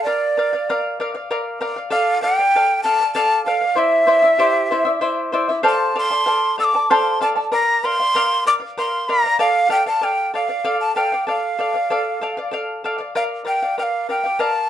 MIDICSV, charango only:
0, 0, Header, 1, 2, 480
1, 0, Start_track
1, 0, Tempo, 623053
1, 48, Time_signature, 6, 3, 24, 8
1, 11321, End_track
2, 0, Start_track
2, 0, Title_t, "Charango"
2, 0, Program_c, 0, 24
2, 47, Note_on_c, 0, 70, 61
2, 51, Note_on_c, 0, 74, 67
2, 55, Note_on_c, 0, 77, 68
2, 278, Note_off_c, 0, 70, 0
2, 285, Note_off_c, 0, 74, 0
2, 287, Note_on_c, 0, 70, 66
2, 291, Note_off_c, 0, 77, 0
2, 294, Note_on_c, 0, 74, 65
2, 299, Note_on_c, 0, 77, 66
2, 400, Note_off_c, 0, 77, 0
2, 407, Note_off_c, 0, 70, 0
2, 409, Note_on_c, 0, 77, 58
2, 410, Note_off_c, 0, 74, 0
2, 418, Note_on_c, 0, 74, 52
2, 528, Note_off_c, 0, 77, 0
2, 531, Note_off_c, 0, 74, 0
2, 535, Note_on_c, 0, 70, 77
2, 540, Note_on_c, 0, 74, 75
2, 540, Note_on_c, 0, 77, 88
2, 760, Note_off_c, 0, 74, 0
2, 761, Note_off_c, 0, 70, 0
2, 769, Note_off_c, 0, 77, 0
2, 769, Note_on_c, 0, 74, 63
2, 770, Note_on_c, 0, 70, 62
2, 779, Note_on_c, 0, 77, 67
2, 873, Note_off_c, 0, 77, 0
2, 881, Note_off_c, 0, 74, 0
2, 882, Note_on_c, 0, 77, 59
2, 888, Note_off_c, 0, 70, 0
2, 890, Note_on_c, 0, 74, 49
2, 999, Note_off_c, 0, 74, 0
2, 1004, Note_off_c, 0, 77, 0
2, 1006, Note_on_c, 0, 70, 67
2, 1008, Note_on_c, 0, 74, 70
2, 1013, Note_on_c, 0, 77, 76
2, 1229, Note_off_c, 0, 70, 0
2, 1235, Note_off_c, 0, 74, 0
2, 1235, Note_off_c, 0, 77, 0
2, 1238, Note_on_c, 0, 70, 71
2, 1244, Note_on_c, 0, 74, 73
2, 1245, Note_on_c, 0, 77, 75
2, 1349, Note_off_c, 0, 77, 0
2, 1359, Note_on_c, 0, 77, 57
2, 1361, Note_off_c, 0, 70, 0
2, 1364, Note_off_c, 0, 74, 0
2, 1373, Note_on_c, 0, 74, 43
2, 1464, Note_off_c, 0, 74, 0
2, 1467, Note_on_c, 0, 69, 83
2, 1469, Note_off_c, 0, 77, 0
2, 1473, Note_on_c, 0, 74, 89
2, 1478, Note_on_c, 0, 77, 91
2, 1705, Note_off_c, 0, 69, 0
2, 1705, Note_off_c, 0, 74, 0
2, 1714, Note_on_c, 0, 69, 60
2, 1714, Note_on_c, 0, 74, 63
2, 1717, Note_off_c, 0, 77, 0
2, 1726, Note_on_c, 0, 77, 69
2, 1830, Note_off_c, 0, 77, 0
2, 1838, Note_off_c, 0, 69, 0
2, 1839, Note_off_c, 0, 74, 0
2, 1839, Note_on_c, 0, 77, 56
2, 1847, Note_on_c, 0, 74, 50
2, 1961, Note_off_c, 0, 77, 0
2, 1965, Note_off_c, 0, 74, 0
2, 1968, Note_on_c, 0, 69, 59
2, 1973, Note_on_c, 0, 74, 60
2, 1975, Note_on_c, 0, 77, 73
2, 2180, Note_off_c, 0, 69, 0
2, 2188, Note_off_c, 0, 74, 0
2, 2189, Note_on_c, 0, 69, 54
2, 2190, Note_off_c, 0, 77, 0
2, 2197, Note_on_c, 0, 74, 62
2, 2199, Note_on_c, 0, 77, 64
2, 2304, Note_off_c, 0, 77, 0
2, 2313, Note_on_c, 0, 77, 57
2, 2316, Note_off_c, 0, 69, 0
2, 2320, Note_off_c, 0, 74, 0
2, 2329, Note_on_c, 0, 74, 46
2, 2422, Note_off_c, 0, 74, 0
2, 2425, Note_off_c, 0, 77, 0
2, 2425, Note_on_c, 0, 69, 82
2, 2431, Note_on_c, 0, 74, 78
2, 2434, Note_on_c, 0, 77, 87
2, 2657, Note_off_c, 0, 69, 0
2, 2666, Note_on_c, 0, 69, 60
2, 2667, Note_off_c, 0, 74, 0
2, 2670, Note_off_c, 0, 77, 0
2, 2676, Note_on_c, 0, 74, 66
2, 2679, Note_on_c, 0, 77, 65
2, 2775, Note_off_c, 0, 77, 0
2, 2784, Note_on_c, 0, 77, 52
2, 2794, Note_off_c, 0, 69, 0
2, 2794, Note_off_c, 0, 74, 0
2, 2803, Note_on_c, 0, 74, 43
2, 2889, Note_off_c, 0, 77, 0
2, 2892, Note_off_c, 0, 74, 0
2, 2893, Note_on_c, 0, 72, 64
2, 2899, Note_on_c, 0, 64, 67
2, 2901, Note_on_c, 0, 74, 69
2, 2907, Note_on_c, 0, 76, 72
2, 3124, Note_off_c, 0, 72, 0
2, 3128, Note_off_c, 0, 64, 0
2, 3132, Note_off_c, 0, 74, 0
2, 3133, Note_on_c, 0, 72, 67
2, 3135, Note_off_c, 0, 76, 0
2, 3137, Note_on_c, 0, 64, 65
2, 3141, Note_on_c, 0, 74, 69
2, 3144, Note_on_c, 0, 76, 70
2, 3244, Note_off_c, 0, 76, 0
2, 3253, Note_on_c, 0, 76, 60
2, 3254, Note_off_c, 0, 74, 0
2, 3258, Note_off_c, 0, 64, 0
2, 3263, Note_on_c, 0, 74, 57
2, 3267, Note_off_c, 0, 72, 0
2, 3267, Note_on_c, 0, 64, 45
2, 3372, Note_off_c, 0, 64, 0
2, 3375, Note_off_c, 0, 74, 0
2, 3376, Note_off_c, 0, 76, 0
2, 3379, Note_on_c, 0, 67, 69
2, 3381, Note_on_c, 0, 64, 73
2, 3384, Note_on_c, 0, 74, 86
2, 3385, Note_on_c, 0, 76, 75
2, 3386, Note_on_c, 0, 72, 77
2, 3618, Note_off_c, 0, 72, 0
2, 3624, Note_off_c, 0, 64, 0
2, 3624, Note_off_c, 0, 74, 0
2, 3627, Note_on_c, 0, 72, 58
2, 3629, Note_off_c, 0, 67, 0
2, 3629, Note_off_c, 0, 76, 0
2, 3634, Note_on_c, 0, 64, 64
2, 3634, Note_on_c, 0, 74, 63
2, 3638, Note_on_c, 0, 76, 72
2, 3728, Note_off_c, 0, 76, 0
2, 3737, Note_on_c, 0, 76, 59
2, 3738, Note_off_c, 0, 74, 0
2, 3739, Note_off_c, 0, 64, 0
2, 3747, Note_on_c, 0, 74, 57
2, 3748, Note_on_c, 0, 64, 51
2, 3753, Note_off_c, 0, 72, 0
2, 3852, Note_off_c, 0, 64, 0
2, 3856, Note_off_c, 0, 74, 0
2, 3857, Note_off_c, 0, 76, 0
2, 3861, Note_on_c, 0, 64, 70
2, 3861, Note_on_c, 0, 72, 70
2, 3866, Note_on_c, 0, 74, 73
2, 3866, Note_on_c, 0, 76, 72
2, 4092, Note_off_c, 0, 72, 0
2, 4099, Note_off_c, 0, 64, 0
2, 4101, Note_off_c, 0, 76, 0
2, 4102, Note_on_c, 0, 72, 61
2, 4104, Note_off_c, 0, 74, 0
2, 4108, Note_on_c, 0, 64, 63
2, 4110, Note_on_c, 0, 76, 76
2, 4113, Note_on_c, 0, 74, 73
2, 4220, Note_off_c, 0, 76, 0
2, 4225, Note_off_c, 0, 74, 0
2, 4229, Note_on_c, 0, 76, 53
2, 4230, Note_off_c, 0, 72, 0
2, 4232, Note_off_c, 0, 64, 0
2, 4234, Note_on_c, 0, 74, 47
2, 4241, Note_on_c, 0, 64, 45
2, 4337, Note_off_c, 0, 64, 0
2, 4338, Note_off_c, 0, 74, 0
2, 4338, Note_on_c, 0, 72, 81
2, 4340, Note_on_c, 0, 69, 90
2, 4344, Note_on_c, 0, 77, 81
2, 4345, Note_off_c, 0, 76, 0
2, 4347, Note_on_c, 0, 74, 90
2, 4348, Note_on_c, 0, 81, 95
2, 4578, Note_off_c, 0, 77, 0
2, 4580, Note_off_c, 0, 69, 0
2, 4581, Note_off_c, 0, 74, 0
2, 4587, Note_off_c, 0, 81, 0
2, 4588, Note_off_c, 0, 72, 0
2, 4588, Note_on_c, 0, 77, 66
2, 4589, Note_on_c, 0, 69, 67
2, 4590, Note_on_c, 0, 74, 62
2, 4596, Note_on_c, 0, 81, 67
2, 4697, Note_off_c, 0, 81, 0
2, 4700, Note_off_c, 0, 74, 0
2, 4704, Note_off_c, 0, 69, 0
2, 4706, Note_on_c, 0, 81, 57
2, 4710, Note_on_c, 0, 74, 52
2, 4713, Note_off_c, 0, 77, 0
2, 4713, Note_on_c, 0, 69, 46
2, 4815, Note_off_c, 0, 69, 0
2, 4823, Note_off_c, 0, 74, 0
2, 4823, Note_on_c, 0, 77, 58
2, 4824, Note_off_c, 0, 81, 0
2, 4825, Note_on_c, 0, 69, 64
2, 4832, Note_on_c, 0, 74, 65
2, 4833, Note_on_c, 0, 81, 62
2, 5059, Note_off_c, 0, 77, 0
2, 5066, Note_off_c, 0, 69, 0
2, 5066, Note_off_c, 0, 74, 0
2, 5068, Note_on_c, 0, 77, 54
2, 5073, Note_off_c, 0, 81, 0
2, 5075, Note_on_c, 0, 69, 62
2, 5075, Note_on_c, 0, 74, 62
2, 5082, Note_on_c, 0, 81, 59
2, 5188, Note_off_c, 0, 81, 0
2, 5191, Note_off_c, 0, 74, 0
2, 5193, Note_off_c, 0, 69, 0
2, 5193, Note_off_c, 0, 77, 0
2, 5197, Note_on_c, 0, 81, 50
2, 5200, Note_on_c, 0, 74, 45
2, 5202, Note_on_c, 0, 69, 42
2, 5312, Note_off_c, 0, 69, 0
2, 5313, Note_off_c, 0, 74, 0
2, 5313, Note_off_c, 0, 81, 0
2, 5318, Note_on_c, 0, 77, 78
2, 5320, Note_on_c, 0, 72, 76
2, 5321, Note_on_c, 0, 69, 87
2, 5323, Note_on_c, 0, 74, 77
2, 5323, Note_on_c, 0, 81, 99
2, 5542, Note_off_c, 0, 77, 0
2, 5548, Note_off_c, 0, 69, 0
2, 5549, Note_off_c, 0, 74, 0
2, 5552, Note_on_c, 0, 77, 62
2, 5557, Note_off_c, 0, 81, 0
2, 5557, Note_on_c, 0, 69, 69
2, 5559, Note_off_c, 0, 72, 0
2, 5559, Note_on_c, 0, 74, 72
2, 5566, Note_on_c, 0, 81, 69
2, 5658, Note_off_c, 0, 81, 0
2, 5666, Note_off_c, 0, 74, 0
2, 5667, Note_on_c, 0, 81, 54
2, 5671, Note_off_c, 0, 69, 0
2, 5675, Note_off_c, 0, 77, 0
2, 5676, Note_on_c, 0, 74, 45
2, 5680, Note_on_c, 0, 69, 42
2, 5785, Note_off_c, 0, 74, 0
2, 5787, Note_off_c, 0, 69, 0
2, 5790, Note_on_c, 0, 70, 69
2, 5793, Note_off_c, 0, 81, 0
2, 5794, Note_on_c, 0, 74, 70
2, 5805, Note_on_c, 0, 77, 67
2, 6028, Note_off_c, 0, 70, 0
2, 6033, Note_off_c, 0, 74, 0
2, 6036, Note_off_c, 0, 77, 0
2, 6037, Note_on_c, 0, 70, 68
2, 6043, Note_on_c, 0, 74, 67
2, 6046, Note_on_c, 0, 77, 71
2, 6151, Note_off_c, 0, 77, 0
2, 6158, Note_off_c, 0, 70, 0
2, 6160, Note_on_c, 0, 77, 57
2, 6161, Note_off_c, 0, 74, 0
2, 6173, Note_on_c, 0, 74, 48
2, 6275, Note_off_c, 0, 74, 0
2, 6279, Note_off_c, 0, 77, 0
2, 6279, Note_on_c, 0, 70, 84
2, 6284, Note_on_c, 0, 74, 83
2, 6288, Note_on_c, 0, 77, 93
2, 6507, Note_off_c, 0, 70, 0
2, 6513, Note_off_c, 0, 74, 0
2, 6516, Note_on_c, 0, 70, 55
2, 6517, Note_off_c, 0, 77, 0
2, 6522, Note_on_c, 0, 74, 66
2, 6526, Note_on_c, 0, 77, 63
2, 6616, Note_off_c, 0, 77, 0
2, 6625, Note_on_c, 0, 77, 53
2, 6630, Note_off_c, 0, 74, 0
2, 6637, Note_off_c, 0, 70, 0
2, 6639, Note_on_c, 0, 74, 49
2, 6751, Note_off_c, 0, 74, 0
2, 6752, Note_off_c, 0, 77, 0
2, 6760, Note_on_c, 0, 74, 59
2, 6761, Note_on_c, 0, 70, 66
2, 6769, Note_on_c, 0, 77, 69
2, 6992, Note_off_c, 0, 70, 0
2, 6995, Note_off_c, 0, 74, 0
2, 7000, Note_off_c, 0, 77, 0
2, 7001, Note_on_c, 0, 70, 65
2, 7004, Note_on_c, 0, 74, 66
2, 7009, Note_on_c, 0, 77, 66
2, 7108, Note_off_c, 0, 77, 0
2, 7117, Note_on_c, 0, 77, 57
2, 7120, Note_off_c, 0, 70, 0
2, 7122, Note_off_c, 0, 74, 0
2, 7132, Note_on_c, 0, 74, 46
2, 7226, Note_off_c, 0, 74, 0
2, 7233, Note_off_c, 0, 77, 0
2, 7235, Note_on_c, 0, 69, 89
2, 7236, Note_on_c, 0, 74, 86
2, 7242, Note_on_c, 0, 77, 86
2, 7458, Note_off_c, 0, 69, 0
2, 7463, Note_off_c, 0, 77, 0
2, 7464, Note_off_c, 0, 74, 0
2, 7467, Note_on_c, 0, 69, 65
2, 7473, Note_on_c, 0, 74, 66
2, 7473, Note_on_c, 0, 77, 72
2, 7590, Note_off_c, 0, 77, 0
2, 7594, Note_off_c, 0, 69, 0
2, 7597, Note_off_c, 0, 74, 0
2, 7600, Note_on_c, 0, 77, 60
2, 7606, Note_on_c, 0, 74, 43
2, 7706, Note_off_c, 0, 74, 0
2, 7714, Note_on_c, 0, 69, 55
2, 7716, Note_on_c, 0, 74, 61
2, 7718, Note_off_c, 0, 77, 0
2, 7727, Note_on_c, 0, 77, 68
2, 7954, Note_off_c, 0, 69, 0
2, 7958, Note_off_c, 0, 74, 0
2, 7963, Note_on_c, 0, 69, 56
2, 7964, Note_off_c, 0, 77, 0
2, 7972, Note_on_c, 0, 74, 61
2, 7976, Note_on_c, 0, 77, 63
2, 8069, Note_off_c, 0, 77, 0
2, 8077, Note_off_c, 0, 74, 0
2, 8078, Note_on_c, 0, 77, 55
2, 8082, Note_off_c, 0, 69, 0
2, 8086, Note_on_c, 0, 74, 47
2, 8192, Note_off_c, 0, 74, 0
2, 8197, Note_off_c, 0, 77, 0
2, 8200, Note_on_c, 0, 69, 74
2, 8202, Note_on_c, 0, 74, 82
2, 8207, Note_on_c, 0, 77, 87
2, 8434, Note_off_c, 0, 69, 0
2, 8441, Note_off_c, 0, 77, 0
2, 8442, Note_off_c, 0, 74, 0
2, 8443, Note_on_c, 0, 69, 68
2, 8450, Note_on_c, 0, 77, 74
2, 8451, Note_on_c, 0, 74, 64
2, 8558, Note_off_c, 0, 77, 0
2, 8563, Note_off_c, 0, 69, 0
2, 8567, Note_off_c, 0, 74, 0
2, 8567, Note_on_c, 0, 77, 51
2, 8580, Note_on_c, 0, 74, 43
2, 8681, Note_off_c, 0, 74, 0
2, 8681, Note_on_c, 0, 69, 67
2, 8685, Note_off_c, 0, 77, 0
2, 8690, Note_on_c, 0, 74, 67
2, 8693, Note_on_c, 0, 77, 64
2, 8916, Note_off_c, 0, 69, 0
2, 8920, Note_off_c, 0, 74, 0
2, 8926, Note_on_c, 0, 69, 60
2, 8928, Note_off_c, 0, 77, 0
2, 8930, Note_on_c, 0, 74, 66
2, 8939, Note_on_c, 0, 77, 65
2, 9036, Note_off_c, 0, 77, 0
2, 9045, Note_off_c, 0, 69, 0
2, 9045, Note_on_c, 0, 77, 54
2, 9047, Note_off_c, 0, 74, 0
2, 9056, Note_on_c, 0, 74, 48
2, 9165, Note_off_c, 0, 77, 0
2, 9166, Note_off_c, 0, 74, 0
2, 9170, Note_on_c, 0, 69, 78
2, 9175, Note_on_c, 0, 74, 79
2, 9181, Note_on_c, 0, 77, 79
2, 9401, Note_off_c, 0, 69, 0
2, 9408, Note_off_c, 0, 74, 0
2, 9410, Note_on_c, 0, 69, 65
2, 9413, Note_off_c, 0, 77, 0
2, 9417, Note_on_c, 0, 74, 64
2, 9421, Note_on_c, 0, 77, 74
2, 9522, Note_off_c, 0, 77, 0
2, 9528, Note_off_c, 0, 69, 0
2, 9531, Note_off_c, 0, 74, 0
2, 9531, Note_on_c, 0, 77, 57
2, 9541, Note_on_c, 0, 74, 49
2, 9641, Note_on_c, 0, 69, 62
2, 9642, Note_off_c, 0, 74, 0
2, 9648, Note_off_c, 0, 77, 0
2, 9652, Note_on_c, 0, 74, 70
2, 9658, Note_on_c, 0, 77, 76
2, 9884, Note_off_c, 0, 69, 0
2, 9889, Note_off_c, 0, 74, 0
2, 9892, Note_off_c, 0, 77, 0
2, 9894, Note_on_c, 0, 69, 64
2, 9902, Note_on_c, 0, 74, 72
2, 9904, Note_on_c, 0, 77, 82
2, 9993, Note_off_c, 0, 77, 0
2, 10002, Note_on_c, 0, 77, 62
2, 10009, Note_off_c, 0, 74, 0
2, 10011, Note_off_c, 0, 69, 0
2, 10019, Note_on_c, 0, 74, 45
2, 10125, Note_off_c, 0, 74, 0
2, 10125, Note_off_c, 0, 77, 0
2, 10132, Note_on_c, 0, 70, 75
2, 10134, Note_on_c, 0, 74, 86
2, 10139, Note_on_c, 0, 77, 79
2, 10350, Note_off_c, 0, 70, 0
2, 10356, Note_off_c, 0, 74, 0
2, 10359, Note_on_c, 0, 70, 55
2, 10365, Note_off_c, 0, 77, 0
2, 10366, Note_on_c, 0, 74, 59
2, 10374, Note_on_c, 0, 77, 57
2, 10484, Note_off_c, 0, 70, 0
2, 10487, Note_off_c, 0, 74, 0
2, 10489, Note_off_c, 0, 77, 0
2, 10498, Note_on_c, 0, 77, 54
2, 10505, Note_on_c, 0, 74, 43
2, 10608, Note_off_c, 0, 74, 0
2, 10614, Note_off_c, 0, 77, 0
2, 10614, Note_on_c, 0, 70, 58
2, 10617, Note_on_c, 0, 74, 58
2, 10626, Note_on_c, 0, 77, 63
2, 10844, Note_off_c, 0, 70, 0
2, 10846, Note_off_c, 0, 74, 0
2, 10853, Note_on_c, 0, 70, 57
2, 10855, Note_off_c, 0, 77, 0
2, 10855, Note_on_c, 0, 74, 54
2, 10864, Note_on_c, 0, 77, 60
2, 10959, Note_off_c, 0, 77, 0
2, 10968, Note_on_c, 0, 77, 48
2, 10972, Note_off_c, 0, 70, 0
2, 10973, Note_off_c, 0, 74, 0
2, 10985, Note_on_c, 0, 74, 37
2, 11084, Note_off_c, 0, 77, 0
2, 11086, Note_off_c, 0, 74, 0
2, 11087, Note_on_c, 0, 70, 76
2, 11094, Note_on_c, 0, 77, 78
2, 11095, Note_on_c, 0, 74, 82
2, 11321, Note_off_c, 0, 70, 0
2, 11321, Note_off_c, 0, 74, 0
2, 11321, Note_off_c, 0, 77, 0
2, 11321, End_track
0, 0, End_of_file